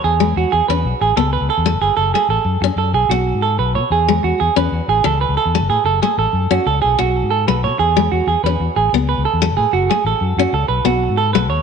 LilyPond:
<<
  \new Staff \with { instrumentName = "Clean electric guitar" } { \time 12/8 \key e \major \tempo 4. = 124 gis'4 fis'8 gis'8 b'4 gis'8 a'8 b'8 a'4 gis'8 | a'8 gis'8 a'4 r8 a'8 gis'8 fis'4 a'8 b'8 cis''8 | gis'4 fis'8 gis'8 b'4 gis'8 a'8 b'8 a'4 gis'8 | a'8 gis'8 a'4 fis'8 a'8 gis'8 fis'4 a'8 b'8 cis''8 |
gis'4 fis'8 gis'8 b'4 gis'8 r8 b'8 a'4 gis'8 | fis'8 gis'8 a'4 fis'8 a'8 b'8 fis'4 a'8 b'8 cis''8 | }
  \new Staff \with { instrumentName = "Steel-string acoustic guitar" } { \time 12/8 \key e \major r8 gis4 r8 cis'4 r8 b4 r8 a4 | r8 a4 r8 cis'4 r8 b4 r4. | r8 gis4 r8 cis'4 r8 e4 r8 a4 | r8 a4 r8 cis'4 r8 b4 r8 a4 |
r8 gis4 r8 cis'4 r8 b4 r8 a4 | r8 a4 r8 cis'4 r8 b4 r8 a4 | }
  \new Staff \with { instrumentName = "Fingered electric bass" } { \clef bass \time 12/8 \key e \major e,4 e,16 r16 e,16 r16 e,8 b,,16 r16 a,,8 cis,8. cis,16 r16 e,8 fis,,16 g,,16 r16 | fis,,8 r8 a,,16 r16 fis,8 fis,16 r16 fis,8 b,,8 b,,8. gis,8. b,,8 b,16 r16 | e,4 e,16 r16 e,16 r16 e,8 e,16 r16 a,,8 cis,8. cis,16 r16 e,8 fis,,16 a,16 r16 | fis,,8 r8 a,,16 r16 fis,8 fis,16 r16 cis,8 b,,8 b,,8. gis,8. b,,8 b,16 r16 |
e,4 e,16 r16 e,16 r16 e,8 e,16 r16 a,,8 cis,8. cis,16 r16 e,8 fis,,16 a,16 r16 | fis,,8 r8 a,,16 r16 fis,8 fis,16 r16 cis,8 b,,8 b,,8. gis,8. b,,8 dis,16 r16 | }
>>